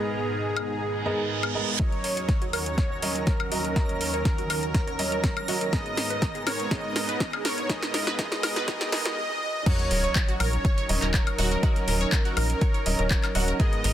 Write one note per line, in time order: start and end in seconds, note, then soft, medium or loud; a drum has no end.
0.00 1.03 G#2 medium
0.00 1.76 G#2 medium
0.00 1.03 G#3 medium
0.00 1.76 G#3 medium
0.00 1.03 B3 medium
0.00 1.76 B3 medium
0.00 1.76 D#4 medium
0.00 1.70 G#4 loud
0.00 1.03 A#4 medium
0.00 1.03 D#5 loud
0.00 1.76 A#5 medium
0.57 high woodblock medium
0.81 reverse cymbal medium
1.06 1.52 G#2 medium
1.06 1.52 G#3 medium
1.06 1.52 B3 medium
1.06 1.52 A#4 medium
1.06 1.52 D#5 medium
1.43 high woodblock medium
1.55 1.77 G#3 medium
1.55 1.77 B3 medium
1.55 1.77 A#4 medium
1.55 1.77 D#5 medium
1.79 5.69 D#2 medium
1.79 5.69 D#3 medium
1.79 3.00 F#3 medium
1.79 3.00 C#4 medium
1.79 5.69 C#4 medium
1.79 1.87 F#4 medium
1.79 5.69 F#4 medium
1.79 3.00 A#4 medium
1.79 7.66 A#4 medium
1.79 2.44 C#5 loud
1.79 9.17 A#5 medium
1.79 kick loud
1.79 snare soft
1.79 closed hi-hat medium
1.79 riser medium
1.92 closed hi-hat soft
2.04 2.07 A#4 medium
2.04 open hi-hat loud
2.17 2.24 C#5 loud
2.17 closed hi-hat medium
2.29 kick loud
2.29 snare soft
2.29 closed hi-hat medium
2.42 2.48 F#4 medium
2.42 closed hi-hat soft
2.53 2.61 A#4 loud
2.53 3.18 C#5 medium
2.53 open hi-hat loud
2.53 high woodblock medium
2.66 closed hi-hat medium
2.78 2.85 C#5 medium
2.78 kick loud
2.78 snare medium
2.78 closed hi-hat medium
2.91 2.95 C#5 medium
3.02 3.49 F#3 medium
3.02 3.49 C#4 medium
3.02 3.49 A#4 medium
3.02 3.49 D#5 medium
3.02 open hi-hat loud
3.15 3.20 A#4 medium
3.15 closed hi-hat medium
3.27 5.64 A#4 loud
3.27 3.34 C#5 medium
3.27 kick loud
3.27 snare medium
3.27 closed hi-hat medium
3.40 high woodblock medium
3.52 3.73 F#3 medium
3.52 3.73 C#4 medium
3.52 3.59 F#4 loud
3.52 3.73 A#4 medium
3.52 3.73 D#5 medium
3.52 open hi-hat loud
3.65 3.69 A#4 medium
3.65 closed hi-hat medium
3.76 4.96 F#3 medium
3.76 4.96 C#4 medium
3.76 3.84 F#4 medium
3.76 4.96 A#4 medium
3.76 4.96 D#5 loud
3.76 kick loud
3.76 snare medium
3.76 closed hi-hat medium
3.89 closed hi-hat soft
4.01 4.04 A#4 medium
4.01 open hi-hat loud
4.14 4.20 C#5 loud
4.14 closed hi-hat medium
4.25 kick loud
4.25 snare medium
4.25 closed hi-hat medium
4.38 4.45 F#4 medium
4.38 closed hi-hat soft
4.50 4.57 A#4 loud
4.50 open hi-hat loud
4.50 high woodblock medium
4.63 closed hi-hat soft
4.74 4.82 C#5 medium
4.74 kick loud
4.74 snare medium
4.74 closed hi-hat medium
4.87 4.92 C#5 medium
4.87 closed hi-hat soft
4.99 5.46 F#3 medium
4.99 5.46 C#4 medium
4.99 5.46 A#4 medium
4.99 5.46 D#5 loud
4.99 open hi-hat loud
5.12 5.17 A#4 medium
5.12 closed hi-hat medium
5.24 5.31 C#5 medium
5.24 kick loud
5.24 snare medium
5.24 closed hi-hat medium
5.37 closed hi-hat soft
5.37 high woodblock medium
5.48 5.70 F#3 medium
5.48 5.70 C#4 medium
5.48 5.56 F#4 loud
5.48 5.70 A#4 medium
5.48 5.70 D#5 medium
5.48 open hi-hat loud
5.61 5.66 A#4 medium
5.61 closed hi-hat medium
5.73 9.14 G#2 medium
5.73 6.69 G#2 medium
5.73 9.14 G#3 medium
5.73 6.69 G#3 medium
5.73 6.69 B3 medium
5.73 9.14 B3 medium
5.73 9.14 D#4 medium
5.73 5.80 G#4 medium
5.73 6.69 A#4 medium
5.73 6.37 D#5 loud
5.73 6.69 D#5 loud
5.73 kick loud
5.73 snare medium
5.73 closed hi-hat medium
5.86 closed hi-hat soft
5.97 6.00 A#4 medium
5.97 snare medium
5.97 open hi-hat loud
6.10 6.17 B4 medium
6.10 closed hi-hat medium
6.22 kick loud
6.22 snare medium
6.22 closed hi-hat medium
6.35 6.42 G#4 medium
6.35 closed hi-hat soft
6.46 6.54 A#4 medium
6.46 6.69 C#5 medium
6.46 snare medium
6.46 open hi-hat loud
6.46 high woodblock medium
6.60 closed hi-hat soft
6.71 7.68 G#2 medium
6.71 7.68 G#3 medium
6.71 7.68 B3 medium
6.71 6.79 G#4 medium
6.71 7.68 A#4 medium
6.71 7.36 D#5 loud
6.71 7.68 D#5 loud
6.71 kick loud
6.71 snare medium
6.71 closed hi-hat medium
6.96 6.99 A#4 medium
6.96 snare medium
6.96 open hi-hat loud
7.09 7.15 B4 loud
7.09 closed hi-hat soft
7.20 kick loud
7.20 snare medium
7.20 closed hi-hat medium
7.33 7.40 G#4 medium
7.33 high woodblock medium
7.45 7.52 A#4 loud
7.45 7.68 C#5 medium
7.45 snare medium
7.45 open hi-hat loud
7.58 closed hi-hat medium
7.69 8.17 G#2 loud
7.69 8.17 G#3 medium
7.69 8.17 B3 medium
7.69 7.77 G#4 medium
7.69 9.16 G#4 loud
7.69 8.17 A#4 medium
7.69 8.17 D#5 loud
7.69 kick loud
7.69 snare medium
7.69 closed hi-hat medium
7.83 snare medium
7.83 closed hi-hat soft
7.94 7.97 A#4 medium
7.94 snare medium
7.94 open hi-hat loud
8.07 8.14 B4 loud
8.07 snare medium
8.07 closed hi-hat medium
8.18 8.66 G#2 loud
8.18 8.66 G#3 medium
8.18 8.66 B3 medium
8.18 8.26 G#4 medium
8.18 8.66 A#4 medium
8.18 8.66 D#5 loud
8.18 kick loud
8.18 snare loud
8.18 closed hi-hat medium
8.32 snare medium
8.32 closed hi-hat soft
8.43 8.46 A#4 medium
8.43 snare loud
8.43 open hi-hat loud
8.43 high woodblock medium
8.56 8.63 B4 loud
8.56 snare medium
8.56 closed hi-hat medium
8.68 8.91 G#2 loud
8.68 8.91 G#3 medium
8.68 8.91 B3 medium
8.68 8.75 G#4 medium
8.68 8.91 A#4 medium
8.68 8.91 D#5 loud
8.68 kick loud
8.68 snare loud
8.68 closed hi-hat medium
8.81 snare medium
8.81 closed hi-hat soft
8.92 9.15 G#2 loud
8.92 9.15 G#3 medium
8.92 9.15 B3 medium
8.92 9.00 G#4 medium
8.92 9.15 A#4 medium
8.92 9.15 D#5 loud
8.92 snare loud
8.92 open hi-hat loud
9.06 snare medium
9.06 closed hi-hat soft
9.17 9.40 D#5 loud
9.42 9.64 D#5 loud
9.66 10.86 F#3 loud
9.66 13.56 F#3 medium
9.66 10.86 C#4 medium
9.66 13.56 C#4 medium
9.66 13.56 D#4 medium
9.66 9.74 F#4 medium
9.66 10.86 A#4 medium
9.66 10.31 C#5 loud
9.66 10.86 D#5 loud
9.66 9.74 F#5 medium
9.66 kick loud
9.66 closed hi-hat medium
9.66 crash loud
9.66 sub drop medium
9.79 closed hi-hat soft
9.91 10.09 D#1 loud
9.91 9.94 A#4 medium
9.91 9.94 A#5 medium
9.91 open hi-hat loud
10.04 10.11 C#5 loud
10.04 10.11 C#6 medium
10.04 closed hi-hat medium
10.15 kick loud
10.15 clap loud
10.15 closed hi-hat medium
10.28 10.35 F#4 medium
10.28 10.35 F#5 medium
10.28 closed hi-hat soft
10.40 10.58 A#1 medium
10.40 10.48 A#4 loud
10.40 11.05 C#5 loud
10.40 10.48 A#5 medium
10.40 open hi-hat loud
10.40 high woodblock medium
10.53 closed hi-hat medium
10.65 10.72 C#5 medium
10.65 10.72 C#6 medium
10.65 kick loud
10.65 closed hi-hat medium
10.78 10.82 C#5 medium
10.78 10.82 C#6 medium
10.78 closed hi-hat soft
10.89 10.99 D#1 loud
10.89 11.36 F#3 medium
10.89 11.36 C#4 medium
10.89 11.36 A#4 medium
10.89 11.36 D#5 loud
10.89 open hi-hat loud
11.02 11.19 D#1 medium
11.02 11.07 A#4 medium
11.02 11.07 A#5 medium
11.02 clap soft
11.02 closed hi-hat medium
11.14 13.50 A#4 loud
11.14 11.21 C#5 medium
11.14 11.21 C#6 medium
11.14 kick loud
11.14 clap loud
11.14 closed hi-hat medium
11.27 closed hi-hat soft
11.27 high woodblock medium
11.38 11.56 D#1 loud
11.38 11.60 F#3 medium
11.38 11.60 C#4 medium
11.38 11.46 F#4 loud
11.38 11.60 A#4 medium
11.38 11.60 D#5 medium
11.38 11.46 F#5 medium
11.38 open hi-hat loud
11.51 11.56 A#4 medium
11.51 11.56 A#5 medium
11.51 closed hi-hat medium
11.63 12.83 F#3 loud
11.63 12.83 C#4 medium
11.63 11.71 F#4 medium
11.63 12.83 A#4 medium
11.63 12.83 D#5 loud
11.63 11.71 F#5 medium
11.63 kick loud
11.63 closed hi-hat medium
11.76 closed hi-hat soft
11.88 12.06 D#1 medium
11.88 11.91 A#4 medium
11.88 11.91 A#5 medium
11.88 open hi-hat loud
12.01 12.07 C#5 loud
12.01 12.07 C#6 medium
12.01 closed hi-hat medium
12.12 kick loud
12.12 clap loud
12.12 closed hi-hat medium
12.25 12.32 F#4 medium
12.25 12.32 F#5 medium
12.25 closed hi-hat soft
12.37 12.55 A#1 loud
12.37 12.44 A#4 loud
12.37 12.44 A#5 medium
12.37 open hi-hat loud
12.37 high woodblock medium
12.50 closed hi-hat medium
12.61 12.69 C#5 medium
12.61 12.69 C#6 medium
12.61 kick loud
12.61 closed hi-hat medium
12.74 12.79 C#5 medium
12.74 12.79 C#6 medium
12.74 closed hi-hat soft
12.86 12.95 D#1 loud
12.86 13.32 F#3 medium
12.86 13.32 C#4 medium
12.86 13.32 A#4 medium
12.86 13.32 D#5 loud
12.86 open hi-hat loud
12.99 13.16 D#1 medium
12.99 13.03 A#4 medium
12.99 13.03 A#5 medium
12.99 closed hi-hat medium
13.10 13.18 C#5 medium
13.10 13.18 C#6 medium
13.10 kick loud
13.10 clap loud
13.10 closed hi-hat medium
13.23 clap soft
13.23 closed hi-hat soft
13.23 high woodblock medium
13.35 13.53 D#1 loud
13.35 13.57 F#3 medium
13.35 13.57 C#4 medium
13.35 13.43 F#4 loud
13.35 13.57 A#4 medium
13.35 13.57 D#5 medium
13.35 13.43 F#5 medium
13.35 open hi-hat loud
13.48 13.53 A#4 medium
13.48 13.53 A#5 medium
13.48 closed hi-hat medium
13.60 13.93 G#2 loud
13.60 13.93 G#3 medium
13.60 13.93 B3 medium
13.60 13.67 G#4 medium
13.60 13.93 A#4 medium
13.60 13.93 D#5 loud
13.60 13.67 G#5 medium
13.60 kick loud
13.60 closed hi-hat medium
13.73 closed hi-hat soft
13.84 13.93 G#1 loud
13.84 13.87 A#4 medium
13.84 13.87 A#5 medium
13.84 open hi-hat loud